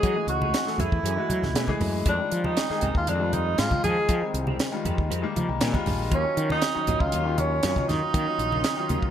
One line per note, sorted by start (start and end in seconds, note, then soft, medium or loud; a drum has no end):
0.00 0.13 E3 medium
0.00 0.16 E3 medium
0.00 0.15 F#3 loud
0.00 0.14 G#3 medium
0.00 0.14 A3 medium
0.00 0.15 A3 medium
0.00 0.14 C#4 medium
0.00 0.28 G#4 loud
0.00 kick medium
0.00 closed hi-hat medium
0.04 0.15 C#4 medium
0.04 0.15 G#4 medium
0.15 0.64 E3 medium
0.15 0.64 G#3 medium
0.15 0.64 A3 medium
0.15 0.64 F#4 medium
0.15 muted fretless electric bass stroke soft
0.15 muted clean electric guitar stroke soft
0.27 0.52 C#2 medium
0.27 0.81 F#4 medium
0.27 muted clean electric guitar stroke soft
0.27 closed hi-hat medium
0.41 0.53 A3 soft
0.41 0.53 C#4 soft
0.41 0.53 G#4 medium
0.41 high conga medium
0.54 muted clean electric guitar stroke soft
0.54 snare loud
0.54 closed hi-hat medium
0.66 1.15 E3 medium
0.66 1.15 A3 medium
0.66 1.15 G#4 medium
0.66 1.15 A4 medium
0.66 snare soft
0.78 0.91 F#2 medium
0.78 0.92 E3 soft
0.78 0.91 A3 medium
0.78 0.91 C#4 medium
0.78 1.81 E4 medium
0.78 0.91 G#4 medium
0.78 closed hi-hat medium
0.78 high conga medium
0.78 low conga medium
0.92 1.03 E2 medium
0.92 muted clean electric guitar stroke soft
0.92 kick medium
1.03 1.16 F#2 medium
1.03 1.17 E3 medium
1.03 1.17 A3 medium
1.03 1.17 C#4 medium
1.03 1.16 G#4 medium
1.03 closed hi-hat medium
1.17 1.65 E3 medium
1.17 1.66 G#3 medium
1.17 1.66 A3 medium
1.17 1.66 F#4 medium
1.17 muted clean electric guitar stroke soft
1.30 1.42 F#3 medium
1.30 muted clean electric guitar stroke soft
1.30 closed hi-hat medium
1.30 high conga medium
1.42 1.54 C#2 medium
1.42 snare soft
1.42 low conga medium
1.54 1.67 B2 medium
1.54 1.69 E3 medium
1.54 1.67 A3 medium
1.54 1.67 C#4 medium
1.54 1.67 G#4 medium
1.54 1.79 G#5 medium
1.54 snare loud
1.54 closed hi-hat medium
1.67 2.06 E3 medium
1.67 2.06 G#3 medium
1.67 2.06 A3 medium
1.67 2.07 G#4 loud
1.67 muted fretless electric bass stroke soft
1.67 muted clean electric guitar stroke soft
1.67 kick medium
1.67 high conga medium
1.80 2.04 F#2 medium
1.80 2.04 E5 medium
1.80 muted clean electric guitar stroke soft
1.80 open hi-hat medium
1.80 low conga medium
2.06 2.18 F2 medium
2.06 2.19 D#3 medium
2.06 2.18 G#3 medium
2.06 2.18 C4 medium
2.06 2.47 D4 medium
2.06 2.17 G4 medium
2.06 kick loud
2.06 closed hi-hat medium
2.19 2.67 D#3 medium
2.19 2.67 G3 medium
2.19 2.67 G#3 medium
2.19 2.67 F4 medium
2.19 muted clean electric guitar stroke soft
2.31 2.56 F3 medium
2.31 muted clean electric guitar stroke soft
2.31 closed hi-hat medium
2.44 2.56 G#3 soft
2.44 2.57 C4 soft
2.44 2.96 D#4 medium
2.44 2.57 G4 soft
2.44 high conga medium
2.57 muted clean electric guitar stroke soft
2.57 snare medium
2.57 closed hi-hat medium
2.69 3.17 D#3 medium
2.69 3.18 G#3 medium
2.69 3.18 G4 medium
2.69 3.18 G#4 medium
2.69 muted fretless electric bass stroke soft
2.69 snare soft
2.81 2.94 C2 medium
2.81 2.95 D#3 medium
2.81 2.94 G#3 medium
2.81 2.94 C4 medium
2.81 2.94 G4 medium
2.81 closed hi-hat medium
2.81 low conga medium
2.95 3.07 D#2 medium
2.95 3.10 F4 medium
2.95 muted clean electric guitar stroke soft
2.95 kick medium
3.07 3.56 F2 medium
3.07 3.21 D#3 medium
3.07 3.20 G#3 medium
3.07 3.19 C4 medium
3.07 3.35 D4 medium
3.07 3.19 G4 medium
3.07 closed hi-hat medium
3.20 3.68 D#3 medium
3.20 3.68 G3 medium
3.20 3.68 G#3 medium
3.20 3.69 F4 medium
3.20 muted clean electric guitar stroke soft
3.33 3.60 D#4 medium
3.33 muted clean electric guitar stroke soft
3.33 closed hi-hat medium
3.33 high conga medium
3.58 3.71 G#2 loud
3.58 3.71 D#3 medium
3.58 3.71 G#3 medium
3.58 3.71 C4 medium
3.58 3.83 F4 medium
3.58 3.71 G4 medium
3.58 snare loud
3.58 closed hi-hat medium
3.70 4.19 D#3 medium
3.70 4.19 F3 medium
3.70 4.19 G#3 medium
3.70 4.19 F4 medium
3.70 muted clean electric guitar stroke soft
3.70 kick medium
3.70 high conga medium
3.84 3.97 F3 medium
3.84 4.31 G#4 loud
3.84 muted clean electric guitar stroke soft
3.84 closed hi-hat medium
3.84 low conga medium
4.09 4.22 D#3 medium
4.09 4.21 F3 loud
4.09 4.21 G#3 medium
4.09 4.21 C4 medium
4.09 4.20 G4 medium
4.09 kick loud
4.09 closed hi-hat medium
4.21 4.69 D#3 medium
4.21 4.70 G3 medium
4.21 4.70 G#3 medium
4.21 4.70 C4 medium
4.21 muted clean electric guitar stroke soft
4.21 muted fretless electric bass stroke soft
4.34 4.58 C2 medium
4.34 muted clean electric guitar stroke soft
4.34 closed hi-hat medium
4.47 4.58 G#3 soft
4.47 4.58 C4 medium
4.47 4.59 G4 medium
4.47 high conga medium
4.59 muted clean electric guitar stroke soft
4.59 snare loud
4.59 closed hi-hat medium
4.72 5.20 D#3 medium
4.72 5.20 G3 medium
4.72 5.20 G#3 medium
4.72 5.21 F4 medium
4.84 4.97 F2 medium
4.84 4.98 D#3 medium
4.84 4.98 G#3 medium
4.84 4.97 C4 medium
4.84 4.97 G4 medium
4.84 closed hi-hat medium
4.84 low conga medium
4.98 5.10 D#2 medium
4.98 muted clean electric guitar stroke soft
4.98 kick medium
5.10 5.22 F2 medium
5.10 5.23 D#3 medium
5.10 5.23 G#3 medium
5.10 5.23 C4 medium
5.10 5.23 G4 medium
5.10 closed hi-hat medium
5.22 5.70 D#3 medium
5.22 5.71 G3 medium
5.22 5.71 G#3 medium
5.22 5.71 A#3 loud
5.22 muted clean electric guitar stroke soft
5.36 5.48 F3 medium
5.36 5.48 D#5 medium
5.36 muted clean electric guitar stroke soft
5.36 closed hi-hat medium
5.36 high conga medium
5.49 5.61 C2 medium
5.49 5.60 G5 medium
5.61 5.73 A#2 medium
5.61 5.74 D#3 medium
5.61 5.74 G#3 medium
5.61 5.74 C4 medium
5.61 5.73 G4 medium
5.61 6.08 G#5 medium
5.61 snare loud
5.61 closed hi-hat medium
5.73 6.11 D#3 medium
5.73 6.12 G3 medium
5.73 6.12 G#3 medium
5.73 6.12 F4 loud
5.73 muted fretless electric bass stroke soft
5.73 muted clean electric guitar stroke medium
5.73 kick medium
5.73 high conga medium
5.86 6.10 A#1 medium
5.86 muted clean electric guitar stroke soft
5.86 open hi-hat medium
5.86 low conga medium
6.11 6.24 D#2 medium
6.11 6.24 F#3 medium
6.11 6.24 A#3 medium
6.11 6.24 C#4 medium
6.11 6.48 C#4 medium
6.11 6.23 F4 medium
6.11 kick loud
6.11 closed hi-hat medium
6.24 6.72 D#3 medium
6.24 6.72 F#3 medium
6.24 6.72 C#4 medium
6.24 6.73 F4 medium
6.24 muted clean electric guitar stroke soft
6.36 6.61 D#3 loud
6.36 muted clean electric guitar stroke soft
6.36 closed hi-hat medium
6.48 6.61 A#3 soft
6.48 6.61 C#4 soft
6.48 7.02 D#4 medium
6.48 6.61 F4 soft
6.48 high conga medium
6.62 muted clean electric guitar stroke soft
6.62 snare medium
6.62 closed hi-hat medium
6.75 7.23 D#3 medium
6.75 7.23 F#3 medium
6.75 7.23 C#4 medium
6.75 7.23 D#4 medium
6.75 muted fretless electric bass stroke soft
6.87 7.00 A#1 medium
6.87 7.00 F#3 medium
6.87 7.00 A#3 medium
6.87 6.99 C#4 medium
6.87 6.99 F4 medium
6.87 closed hi-hat medium
6.87 low conga medium
7.00 7.12 C#2 medium
7.00 7.40 F4 loud
7.00 muted clean electric guitar stroke soft
7.00 kick medium
7.12 7.61 D#2 medium
7.12 7.26 F#3 medium
7.12 7.24 A#3 medium
7.12 7.24 C#4 medium
7.12 7.24 F4 medium
7.12 closed hi-hat medium
7.25 7.73 D#3 medium
7.25 7.73 F#3 medium
7.25 7.73 C#4 medium
7.25 7.74 F4 medium
7.25 muted clean electric guitar stroke soft
7.38 7.88 C#4 medium
7.38 muted clean electric guitar stroke soft
7.38 closed hi-hat medium
7.38 high conga medium
7.63 7.76 F#2 loud
7.63 7.76 F#3 medium
7.63 7.76 A#3 medium
7.63 7.75 C#4 medium
7.63 7.76 F4 medium
7.63 snare loud
7.63 closed hi-hat medium
7.76 8.24 D#3 medium
7.76 8.24 F#3 medium
7.76 8.24 C#4 medium
7.76 8.25 F4 medium
7.76 muted clean electric guitar stroke soft
7.76 kick medium
7.76 high conga medium
7.88 8.01 D#3 medium
7.88 9.11 D#4 loud
7.88 muted clean electric guitar stroke soft
7.88 snare soft
7.88 closed hi-hat medium
7.88 low conga medium
8.14 8.26 D#3 loud
8.14 8.27 F#3 medium
8.14 8.27 A#3 medium
8.14 8.27 C#4 medium
8.14 8.26 F4 medium
8.14 kick loud
8.14 closed hi-hat medium
8.26 8.74 D#3 medium
8.26 8.74 F#3 medium
8.26 8.74 C#4 medium
8.26 8.75 F4 medium
8.26 muted fretless electric bass stroke soft
8.26 muted clean electric guitar stroke soft
8.38 8.63 A#1 medium
8.38 muted clean electric guitar stroke soft
8.38 closed hi-hat medium
8.52 8.64 A#3 soft
8.52 8.64 C#4 medium
8.52 8.64 F4 medium
8.52 high conga medium
8.64 muted clean electric guitar stroke soft
8.64 snare loud
8.64 closed hi-hat medium
8.76 9.11 D#3 medium
8.76 9.11 F#3 medium
8.76 9.11 C#4 medium
8.76 9.11 F4 medium
8.89 9.02 D#2 medium
8.89 9.02 F#3 medium
8.89 9.02 A#3 medium
8.89 9.02 C#4 medium
8.89 9.02 F4 medium
8.89 closed hi-hat soft
8.89 high conga medium
9.02 9.11 C#2 medium
9.02 muted clean electric guitar stroke medium
9.02 kick medium